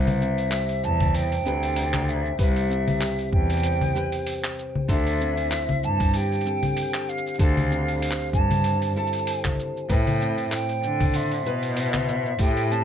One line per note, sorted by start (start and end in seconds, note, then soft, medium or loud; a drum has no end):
0.00 0.49 C2 loud
0.00 2.38 C3 medium
0.00 1.45 B4 medium
0.00 0.85 E5 loud
0.07 open hi-hat soft
0.07 low conga medium
0.07 cabasa soft
0.21 1.45 C4 medium
0.21 cabasa medium
0.38 open hi-hat soft
0.38 cabasa soft
0.51 1.45 G4 medium
0.51 clap medium
0.51 open hi-hat medium
0.51 cabasa soft
0.69 open hi-hat soft
0.69 cabasa soft
0.84 1.43 E2 medium
0.84 1.09 A5 loud
0.84 cabasa medium
1.00 kick loud
1.00 open hi-hat soft
1.00 low conga medium
1.00 cabasa soft
1.09 1.16 A5 medium
1.14 1.44 C5 medium
1.14 2.10 G5 loud
1.14 open hi-hat medium
1.14 cabasa soft
1.32 open hi-hat soft
1.32 cabasa soft
1.45 2.36 D2 medium
1.45 2.69 C4 medium
1.45 3.00 G4 medium
1.45 2.38 B4 medium
1.45 cabasa medium
1.63 open hi-hat soft
1.63 cabasa soft
1.76 open hi-hat medium
1.76 cabasa soft
1.94 clap medium
1.94 low conga medium
2.08 2.39 E5 medium
2.08 cabasa medium
2.26 cabasa soft
2.38 2.98 C2 loud
2.38 4.88 C3 medium
2.38 2.68 G4 medium
2.38 3.95 B4 medium
2.38 3.29 E5 loud
2.38 kick loud
2.38 open hi-hat medium
2.38 cabasa soft
2.56 open hi-hat soft
2.56 cabasa soft
2.69 3.95 C4 medium
2.69 cabasa medium
2.88 open hi-hat soft
2.88 low conga medium
2.88 cabasa soft
3.01 3.94 G4 medium
3.01 clap medium
3.01 open hi-hat medium
3.01 cabasa soft
3.19 open hi-hat soft
3.19 cabasa soft
3.32 3.92 E2 medium
3.32 4.54 G5 loud
3.32 kick loud
3.50 open hi-hat soft
3.50 cabasa soft
3.54 open hi-hat soft
3.57 open hi-hat soft
3.60 3.83 C5 loud
3.60 open hi-hat soft
3.63 open hi-hat medium
3.63 cabasa soft
3.68 open hi-hat soft
3.72 open hi-hat soft
3.77 open hi-hat soft
3.81 open hi-hat soft
3.81 low conga medium
3.95 5.20 C4 medium
3.95 4.96 G4 medium
3.95 4.88 B4 medium
3.95 cabasa medium
4.12 open hi-hat soft
4.12 cabasa soft
4.27 open hi-hat medium
4.27 cabasa soft
4.44 clap medium
4.59 cabasa medium
4.75 low conga medium
4.88 5.48 D2 loud
4.88 7.39 D3 medium
4.88 6.46 A4 medium
4.88 5.20 C5 medium
4.88 5.85 E5 loud
4.88 kick loud
4.88 open hi-hat medium
4.88 cabasa soft
5.07 open hi-hat soft
5.07 cabasa soft
5.20 6.45 C4 medium
5.20 cabasa medium
5.37 open hi-hat soft
5.37 cabasa soft
5.51 7.43 E4 medium
5.51 clap medium
5.51 open hi-hat medium
5.51 cabasa soft
5.69 open hi-hat soft
5.69 low conga medium
5.69 cabasa soft
5.83 6.42 G2 medium
5.83 6.17 A5 loud
5.83 cabasa medium
6.00 kick loud
6.00 open hi-hat soft
6.00 cabasa soft
6.14 6.44 G4 medium
6.14 7.10 G5 loud
6.14 open hi-hat medium
6.14 cabasa soft
6.32 open hi-hat soft
6.32 cabasa soft
6.35 open hi-hat soft
6.41 open hi-hat soft
6.45 7.70 C4 medium
6.45 7.40 A4 medium
6.45 cabasa medium
6.63 open hi-hat soft
6.63 low conga medium
6.63 cabasa soft
6.77 open hi-hat medium
6.77 cabasa soft
6.94 clap medium
7.09 7.39 F5 loud
7.09 cabasa medium
7.18 cabasa medium
7.27 cabasa medium
7.34 cabasa soft
7.39 7.99 D2 loud
7.39 9.89 D3 medium
7.39 8.97 A4 medium
7.39 7.59 C5 loud
7.39 8.29 F5 loud
7.39 kick loud
7.39 open hi-hat medium
7.39 cabasa soft
7.57 open hi-hat soft
7.57 low conga medium
7.57 cabasa soft
7.70 8.95 C4 medium
7.70 cabasa medium
7.88 open hi-hat soft
7.88 cabasa soft
8.02 open hi-hat medium
8.02 cabasa soft
8.11 clap medium
8.20 open hi-hat soft
8.20 cabasa soft
8.33 8.92 G2 medium
8.33 8.91 A5 loud
8.33 kick loud
8.33 cabasa medium
8.51 open hi-hat soft
8.51 low conga medium
8.64 8.94 C5 medium
8.64 open hi-hat medium
8.64 cabasa soft
8.82 open hi-hat soft
8.82 cabasa soft
8.95 10.21 C4 medium
8.95 10.52 E4 medium
8.95 9.90 A4 medium
8.95 9.24 C5 medium
8.95 9.55 A5 medium
8.95 cabasa soft
9.07 cabasa soft
9.13 open hi-hat soft
9.13 cabasa soft
9.17 cabasa medium
9.26 9.56 C5 loud
9.26 open hi-hat medium
9.26 cabasa soft
9.45 kick medium
9.45 clap medium
9.45 low conga medium
9.59 cabasa medium
9.77 cabasa soft
9.89 12.38 A2 medium
9.89 10.49 A2 loud
9.89 11.46 B4 medium
9.89 10.08 C5 loud
9.89 10.48 G5 medium
9.89 kick loud
9.89 open hi-hat medium
9.89 cabasa soft
10.07 open hi-hat soft
10.07 low conga medium
10.07 cabasa soft
10.21 11.50 C4 medium
10.21 cabasa medium
10.38 open hi-hat soft
10.38 cabasa soft
10.52 11.46 E4 medium
10.52 11.17 G5 medium
10.52 clap medium
10.52 open hi-hat medium
10.52 cabasa soft
10.69 open hi-hat soft
10.69 cabasa soft
10.83 11.42 D3 medium
10.83 cabasa medium
11.00 kick loud
11.00 open hi-hat soft
11.00 low conga medium
11.00 cabasa soft
11.05 cabasa soft
11.10 11.44 C6 medium
11.10 open hi-hat medium
11.10 cabasa soft
11.15 11.78 E5 medium
11.15 cabasa soft
11.21 cabasa soft
11.26 cabasa soft
11.31 open hi-hat soft
11.31 cabasa soft
11.46 12.36 B2 medium
11.46 12.84 E4 medium
11.46 12.40 B4 medium
11.46 cabasa medium
11.63 open hi-hat soft
11.63 cabasa soft
11.77 12.42 E5 loud
11.77 open hi-hat medium
11.77 cabasa soft
11.94 clap medium
11.94 low conga medium
12.09 cabasa medium
12.26 cabasa soft
12.39 12.84 A2 medium
12.39 12.84 A2 loud
12.39 12.69 G4 medium
12.39 12.73 G5 medium
12.39 kick loud
12.39 open hi-hat medium
12.39 cabasa soft
12.57 open hi-hat soft
12.57 cabasa soft
12.71 12.84 C4 medium
12.71 12.84 A5 loud
12.71 cabasa medium